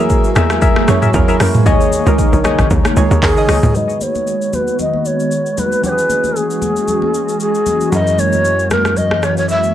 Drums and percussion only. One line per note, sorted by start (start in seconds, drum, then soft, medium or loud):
0.10 kick medium
0.10 shaker medium
0.24 shaker soft
0.36 cross-stick loud
0.36 high conga medium
0.36 low conga medium
0.36 shaker medium
0.50 cross-stick medium
0.50 shaker medium
0.62 kick loud
0.62 low conga medium
0.62 shaker medium
0.76 cross-stick loud
0.76 high conga medium
0.88 cross-stick medium
0.88 high conga medium
0.88 shaker medium
1.02 mid tom medium
1.02 shaker medium
1.14 kick loud
1.14 shaker medium
1.28 shaker soft
1.40 cross-stick loud
1.40 open hi-hat medium
1.40 high conga medium
1.40 low conga medium
1.40 shaker loud
1.54 mid tom loud
1.54 shaker medium
1.66 kick loud
1.66 low conga medium
1.66 shaker medium
1.81 shaker medium
1.92 high conga medium
1.92 shaker loud
2.06 high conga medium
2.06 shaker medium
2.19 kick medium
2.19 shaker medium
2.33 shaker soft
2.44 cross-stick loud
2.44 high conga medium
2.44 low conga medium
2.44 shaker medium
2.59 kick loud
2.59 cross-stick medium
2.59 shaker medium
2.70 kick loud
2.70 low conga medium
2.70 shaker medium
2.85 cross-stick loud
2.85 high conga medium
2.85 shaker medium
2.96 shaker medium
3.11 shaker medium
3.22 kick loud
3.22 clap medium
3.22 shaker medium
3.37 shaker soft
3.49 cross-stick loud
3.49 open hi-hat medium
3.49 high conga medium
3.49 low conga medium
3.49 shaker medium
3.63 mid tom loud
3.63 shaker medium
3.75 low conga medium
3.75 shaker medium
3.89 shaker medium
4.01 high conga medium
4.01 shaker loud
4.15 high conga medium
4.15 shaker medium
4.27 shaker medium
4.42 shaker soft
4.53 high conga medium
4.53 low conga medium
4.53 shaker medium
4.68 shaker soft
4.79 low conga medium
4.79 shaker medium
4.94 high conga medium
5.05 shaker medium
5.20 shaker medium
5.31 shaker medium
5.46 shaker soft
5.58 high conga medium
5.58 low conga medium
5.58 shaker medium
5.72 shaker medium
5.83 low conga medium
5.83 shaker medium
5.98 shaker medium
6.09 high conga medium
6.09 shaker medium
6.24 high conga medium
6.24 shaker medium
6.36 shaker medium
6.50 shaker soft
6.62 high conga medium
6.62 low conga medium
6.62 shaker medium
6.76 shaker soft
6.88 low conga medium
6.88 shaker medium
7.02 high conga medium
7.14 shaker medium
7.29 shaker medium
7.40 shaker medium
7.55 shaker soft
7.66 high conga medium
7.66 low conga medium
7.66 shaker medium
7.81 shaker medium
7.92 low conga medium
7.92 shaker medium
8.07 shaker medium
8.18 high conga medium
8.18 shaker medium
8.33 high conga medium
8.33 shaker medium
8.45 shaker medium
8.59 shaker soft
8.71 cross-stick medium
8.71 high conga medium
8.71 low conga medium
8.71 shaker medium
8.85 cross-stick medium
8.85 shaker soft
8.96 low conga medium
8.96 shaker medium
9.11 cross-stick medium
9.11 high conga medium
9.23 cross-stick medium
9.23 shaker medium
9.37 shaker medium
9.49 shaker medium
9.63 shaker soft